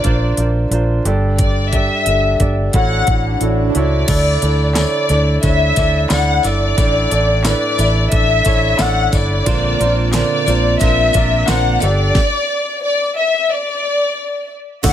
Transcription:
Already playing: A#2 D4 F4 A#4 C5 D5
0.04 A#1 D4 F4 A#4 C5, kick, closed hi-hat
0.37 A#1 D4 F4 A#4 C5, closed hi-hat
0.71 A#1 D4 F4 A#4 C5, closed hi-hat
1.05 G1 G2 D4 G4 A4 D5, closed hi-hat
1.39 D5, kick, closed hi-hat, swell
1.73 D4 G4 A4 D5 E5, kick, closed hi-hat
2.06 G1 D4 G4 A4 E5, closed hi-hat
2.39 G1 D4 G4 A4 D5, kick, closed hi-hat
2.73 A1 A2 E4 F#4 A4 C#5 F#5, kick, closed hi-hat
3.07 A1 E4 F#4 A4 C#5, kick, closed hi-hat
3.41 A1 E4 F#4 A4 C#5, closed hi-hat
3.75 C#2 E4 F#4 A4 C#5 D5, closed hi-hat
4.08 D2 D3 D4 E4 A4 D5, kick, closed hi-hat, crash, tambourine
4.42 D2 D4 E4 A4 D5, closed hi-hat
4.75 D4 E4 A4 C#5 D5, snare, clap, closed hi-hat, tambourine
5.09 D2 D4 E4 A4 D5, closed hi-hat, tambourine
5.43 D2 D4 E4 A4 C#5 E5, kick, closed hi-hat, tambourine
5.76 D2 D4 E4 A4 D5, kick, closed hi-hat, tambourine
6.10 D2 D4 E4 A4 D5 F#5, snare, clap, closed hi-hat, tambourine
6.43 G1 D4 E4 A4 D5, closed hi-hat, tambourine
6.77 A1 A2 D4 E4 A4 D5, kick, closed hi-hat, tambourine
7.11 A1 D4 E4 A4 D5, closed hi-hat, tambourine
7.44 D4 E4 A4 B4 D5, snare, clap, closed hi-hat, tambourine
7.78 A1 D4 E4 A4 E5, closed hi-hat, tambourine
8.11 A1 D4 E4 A4 D5 E5, kick, closed hi-hat
8.45 A1 D4 E4 A4 C#5, kick, closed hi-hat, tambourine
8.78 A1 D4 E4 A4 D5 F#5, snare, clap, closed hi-hat, tambourine
9.12 G1 D4 E4 A4 D5, kick, closed hi-hat, tambourine
9.46 A#1 A#2 D3 A#3 C4 D4 F4 A#4 C5, kick, closed hi-hat, tambourine
9.80 A#1 A#3 C4 D4 F4 A#4 C5, closed hi-hat
10.12 A#2 D3 A#3 C4 D4 F4 A#4 C5 D5, snare, clap, closed hi-hat, tambourine
10.46 A#1 A#3 C4 D4 F4 A#4 C5, closed hi-hat, tambourine
10.79 A#1 A#3 C4 D4 F4 A#4 C5 E5, kick, closed hi-hat, tambourine
11.13 A#1 A#3 C4 D4 F4 A#4 D5, kick, closed hi-hat, tambourine
11.47 A#1 A#2 D3 A#3 C4 D4 F4 A#4 C5 F#5, snare, clap, closed hi-hat, tambourine
11.80 G1 D4 G4 A4 D5, closed hi-hat, tambourine
12.15 kick, snare
12.84 D5
13.19 E5
13.51 D5
14.83 D2 D3 A3 D4 E4 A4 D5 F#5, kick, open hi-hat, crash, tambourine, downlifter

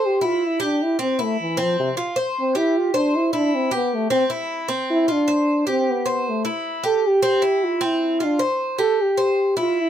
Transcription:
Already playing: C5
0.06 G4
0.21 E4 F4
0.45 E4
0.60 D4 G4
0.83 E4
0.99 C4
1.19 A3 E4
1.41 E3
1.57 C4
1.62 F3
1.79 C3
1.97 F4
2.16 C5
2.39 C4
2.55 E4 G4
2.78 F4
2.94 D4 C5
3.16 E4
3.33 D4 E4
3.55 C4
3.71 B3 G4
3.94 A3
4.10 C4
4.30 E4
4.68 C4
4.90 E4
5.08 D4 F4
5.28 C5
5.67 C4 G4
5.90 B3
6.06 C5
6.29 A3
6.45 E4
6.84 G4 A4
7.07 G4
7.22 C4
7.42 E4
7.64 F4
7.81 C4
7.85 E4
8.20 D4 F4
8.39 C5
8.79 G4 A4
9.02 G4
9.17 C5
9.57 E4 F4
9.80 E4

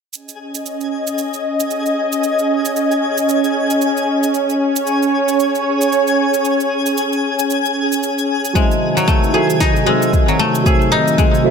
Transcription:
0.13 C#4 G#4 D#5 G#5, cabasa
0.29 cabasa
0.55 cabasa
0.66 cabasa
0.81 cabasa
1.07 cabasa
1.18 cabasa
1.34 cabasa
1.60 cabasa
1.71 cabasa
1.86 cabasa
2.12 cabasa
2.24 cabasa
2.39 cabasa
2.65 cabasa
2.76 cabasa
2.91 cabasa
3.18 cabasa
3.29 cabasa
3.44 cabasa
3.70 cabasa
3.81 cabasa
3.97 cabasa
4.23 cabasa
4.34 C#5, cabasa
4.50 cabasa
4.76 cabasa
4.87 cabasa
5.03 cabasa
5.28 cabasa
5.40 cabasa
5.55 cabasa
5.81 cabasa
5.92 cabasa
6.07 cabasa
6.34 cabasa
6.45 cabasa
6.60 cabasa
6.86 cabasa
6.97 cabasa
7.13 cabasa
7.39 cabasa
7.50 cabasa
7.66 cabasa
7.92 cabasa
8.03 cabasa
8.18 cabasa
8.45 cabasa
8.53 C3 D#3 G#3 F#4 C5 E5 A5, kick, cabasa
8.71 cabasa
8.97 F#3, cabasa
9.08 A3, kick, cabasa
9.24 cabasa
9.33 F#4 G#4 A4 C5 E5
9.50 cabasa
9.60 D#4, kick, snare, cabasa
9.76 cabasa
9.85 G#3 F#4 C5
9.89 E6
10.02 cabasa
10.13 kick, cabasa
10.28 F#3, cabasa
10.39 A3
10.55 cabasa
10.64 A3 F#4 G#4 C5 E6, kick, cabasa
10.81 cabasa
10.92 D#4
11.08 cabasa
11.18 G#3, kick, cabasa
11.34 cabasa
11.44 F#4 A4 C5 E5

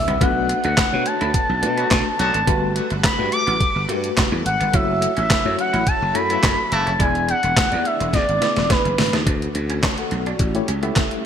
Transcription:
Already playing: E3 B3 D4 G#4 E5
0.08 C2 B3, closed hi-hat, floor tom
0.20 B1 A3 B3 D4 F#4 B4 F#5, kick, closed hi-hat
0.49 muted clean electric guitar stroke, closed hi-hat
0.64 D2 D4 F#5, closed hi-hat
0.77 E4, kick, snare, clap, closed hi-hat
0.92 B2 A3 D4 F#4 C#5
1.06 A5, muted clean electric guitar stroke, closed hi-hat
1.21 D2 E4, closed hi-hat
1.34 muted clean electric guitar stroke, kick, closed hi-hat
1.49 B1
1.62 B2 A3 D4 F#4 B4, closed hi-hat
1.78 D3 F#3 B3 F#4, closed hi-hat
1.91 B2 A3, kick, snare, clap, closed hi-hat
2.19 B1 D3 F#3 B3 F#4 A5, muted clean electric guitar stroke, closed hi-hat
2.34 G#1 D4, closed hi-hat
2.47 G1 G3 A3 B3 F#4 G4 A4 B4 F#5, kick, closed hi-hat
2.76 muted clean electric guitar stroke, closed hi-hat
2.90 G1 A3, closed hi-hat
3.04 B3 B5, kick, snare, clap, closed hi-hat
3.18 G2 A3 F#4 G4 B4
3.32 D6, muted clean electric guitar stroke, closed hi-hat
3.47 A1 B3, closed hi-hat
3.61 kick, closed hi-hat
3.76 G1
3.89 G2 A3 F#4 G4 A#4, closed hi-hat
3.96 B4
4.04 closed hi-hat
4.17 B3, kick, snare, clap, closed hi-hat
4.32 E2, muted clean electric guitar stroke
4.46 G#1 F#5, closed hi-hat
4.60 G1 B3, closed hi-hat
4.74 F#1 F#3 A3 C#4 E4 F#4 C#5 E5, kick, closed hi-hat
5.02 muted clean electric guitar stroke, closed hi-hat
5.17 A1 C#4 E5, closed hi-hat
5.30 E4, kick, snare, clap, closed hi-hat
5.45 F#2 A3 E4 F#4 C#5
5.59 F#5, muted clean electric guitar stroke, closed hi-hat
5.73 A1 E4, closed hi-hat
5.87 A5, muted clean electric guitar stroke, kick, closed hi-hat
6.02 F#1
6.15 F#2 A3 C#4 E4 F#4 A4 B5, closed hi-hat
6.30 C#3 E3 A3 B3 E4, closed hi-hat
6.43 F#2 A3, kick, snare, clap, closed hi-hat
6.71 F#1 C#3 E3 A3 E4 A5, muted clean electric guitar stroke, closed hi-hat
6.87 F1 C#4, closed hi-hat
6.99 E1 E3 B3 D4 E4 G#4 D5 G#5, kick, closed hi-hat
7.15 closed hi-hat
7.28 F#5, muted clean electric guitar stroke, closed hi-hat
7.43 E1 B3, closed hi-hat
7.57 G#3, kick, snare, clap, closed hi-hat
7.71 E2 B3 E4 G#4 D5, closed hi-hat
7.85 E5, muted clean electric guitar stroke, closed hi-hat
8.00 E1 G#3, closed hi-hat
8.13 E2 D5, kick, snare, closed hi-hat
8.29 G#1, closed hi-hat
8.41 B3 E4 G#4 D5, snare, closed hi-hat
8.56 E1, snare, closed hi-hat
8.70 B3 B4, kick, snare, closed hi-hat
8.85 F#1, muted clean electric guitar stroke, closed hi-hat
8.98 G#1, snare, open hi-hat
9.13 D#2 D4, snare, closed hi-hat
9.26 D2 D3 A3 C#4 D4 F#4, kick, closed hi-hat
9.42 closed hi-hat
9.55 D2, muted clean electric guitar stroke, closed hi-hat
9.70 C#4, closed hi-hat
9.83 D4 C#5 A5, kick, snare, clap, closed hi-hat
9.98 A4 F#5, closed hi-hat
10.11 B1, muted clean electric guitar stroke, closed hi-hat
10.26 D4 F#4 D5, closed hi-hat
10.39 A1 G3, muted clean electric guitar stroke, kick, closed hi-hat
10.55 A3 E4 G4 C#5, closed hi-hat
10.68 C#2 C#4, closed hi-hat
10.83 A3 B3 E4 G4 E5, closed hi-hat
10.96 A3, kick, snare, clap, closed hi-hat
11.11 closed hi-hat

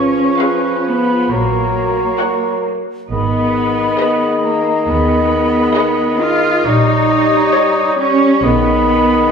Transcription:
Already playing: G#1 F3 C#4 F4 G#4 B4 C#5 C#6
0.39 G#4 B4 F5
0.86 B3 B5
1.30 A#1 F#3 A#3 F#4 A#4 C#5 A#5
2.19 F#4 C#5 F#5
3.10 G#1 D#3 B3 G#4 D#5 B5
3.98 G#4 B4 D#5
4.44 A#3 A#5
4.88 D#2 B3 B5
5.75 G#4 B4 D#5
6.22 F4 F6
6.66 A#1 G3 D#4 G4 C#5 D#6
7.55 G4 C#5
8.00 C#4 C#6
8.43 B1 D#3 B3 G#4 D#5 B5

